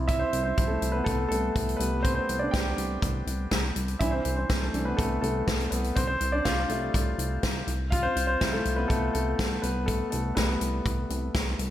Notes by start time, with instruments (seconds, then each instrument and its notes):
Already playing: analog synth bass C2, grand piano F3 C4 E4
0.08 grand piano E4 E5, kick, closed hi-hat
0.19 grand piano C4 C5
0.33 analog synth bass C2, closed hi-hat
0.43 grand piano C4 C5
0.57 analog synth bass C2, grand piano F3 C4 E4, kick, closed hi-hat
0.68 grand piano A3 A4
0.81 analog synth bass C2, closed hi-hat
0.92 grand piano B3 B4
1.04 analog synth bass C2, grand piano A3 A4, kick, closed hi-hat
1.28 analog synth bass C2, grand piano A3 A4, closed hi-hat
1.56 analog synth bass C2, kick, closed hi-hat
1.69 closed hi-hat
1.77 analog synth bass C2, grand piano G3 A3 B3 B4, closed hi-hat
2.03 grand piano C4 C5, kick, closed hi-hat
2.15 grand piano C4 C5
2.29 analog synth bass C2, closed hi-hat
2.39 grand piano D4 D5
2.51 analog synth bass C2, grand piano G4 G5, kick, snare, closed hi-hat
2.78 analog synth bass C2, closed hi-hat
3.02 analog synth bass C2, kick, closed hi-hat
3.27 analog synth bass C2, closed hi-hat
3.51 analog synth bass C2, kick, snare, closed hi-hat
3.76 analog synth bass C2, closed hi-hat
3.88 closed hi-hat
3.99 analog synth bass C2, grand piano E3 C4 D4 E4 E5, kick, closed hi-hat
4.11 grand piano C4 C5
4.25 analog synth bass C2, closed hi-hat
4.36 grand piano C4 C5
4.49 analog synth bass C2, kick, snare, closed hi-hat
4.61 grand piano A3 A4
4.74 analog synth bass C2, grand piano E3 C4 D4, closed hi-hat
4.85 grand piano B3 B4
4.97 analog synth bass C2, grand piano A3 A4, kick, closed hi-hat
5.22 analog synth bass C2, grand piano A3 A4, closed hi-hat
5.48 analog synth bass C2, kick, snare, closed hi-hat
5.60 closed hi-hat
5.70 analog synth bass C2, grand piano B3 B4, closed hi-hat
5.84 closed hi-hat
5.96 analog synth bass C2, grand piano C4 C5, kick, closed hi-hat
6.07 grand piano C4 C5
6.21 analog synth bass C2, closed hi-hat
6.32 grand piano D4 D5
6.45 analog synth bass C2, grand piano F4 F5, kick, snare, closed hi-hat
6.69 analog synth bass C2, grand piano G3 A3 E5, closed hi-hat
6.94 analog synth bass C2, kick, closed hi-hat
7.18 analog synth bass C2, closed hi-hat
7.43 analog synth bass C2, kick, snare, closed hi-hat
7.67 analog synth bass C2, closed hi-hat
7.90 grand piano F4 F5, kick, closed hi-hat
8.03 grand piano C4 C5
8.16 analog synth bass C2, closed hi-hat
8.27 grand piano C4 C5
8.40 analog synth bass C2, grand piano F3 C4 E4, kick, snare, closed hi-hat
8.52 grand piano A3 A4
8.65 analog synth bass C2, closed hi-hat
8.76 grand piano B3 B4
8.88 analog synth bass C2, grand piano A3 A4, kick, closed hi-hat
9.13 analog synth bass C2, grand piano A3 A4, closed hi-hat
9.39 analog synth bass C2, kick, snare, closed hi-hat
9.62 analog synth bass C2, grand piano B3 B4, closed hi-hat
9.86 grand piano A3 A4, kick, closed hi-hat
10.10 analog synth bass C2, grand piano A3 A4, closed hi-hat
10.35 analog synth bass C2, grand piano G3 A3 B3 B4, kick, snare, closed hi-hat
10.61 analog synth bass C2, closed hi-hat
10.85 analog synth bass C2, kick, closed hi-hat
11.10 analog synth bass C2, closed hi-hat
11.34 analog synth bass C2, kick, snare, closed hi-hat
11.59 analog synth bass C2, closed hi-hat